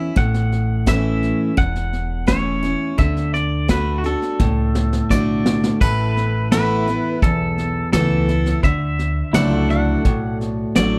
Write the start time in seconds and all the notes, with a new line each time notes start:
Already playing: C#4 E4 E5
0.16 A1 A2 F#5, kick, snare
0.34 snare
0.52 snare
0.86 E3 A3 C#4 E4 E5, kick, snare, hi-hat pedal
1.23 snare
1.57 E1 E2 F#5, kick, snare
1.75 snare
1.93 snare
2.27 E3 A3 C#4 E4 C#5, kick, snare, hi-hat pedal
2.63 C#4 E4, snare
2.98 D2 D3 E5, kick, snare
3.17 snare
3.34 D5, snare
3.68 D3 A3 D4 F#4 B4, kick, snare, hi-hat pedal
3.98 F#4
4.04 D4 F#4 A4, snare
4.22 snare
4.40 C#2 A2, kick, snare
4.75 snare
4.93 snare
5.10 B1 D3 A3 D4 F#4 D5, kick, snare, hi-hat pedal
5.46 snare
5.63 snare
5.81 A1 A2 E4 A4 B4, kick, snare, crash
6.17 snare
6.52 E3 A3 B3 E4 B4, snare, hi-hat pedal
6.87 B3 E4, snare
7.22 B1 E2 A4, kick, snare
7.58 snare
7.93 C#2 E3 A3 B3 E4 A4, snare, hi-hat pedal
8.28 B3 E4, snare
8.46 snare
8.63 D2 D3 E5, kick, snare
8.99 snare
9.33 C#2 F#3 A3 D4 E4 A4 D5 F#5, snare, hi-hat pedal
9.58 F#4
9.70 F#5, snare
10.05 B1 A2, kick, snare
10.41 snare
10.76 A1 F#3 A3 D4 E4 D5, snare, hi-hat pedal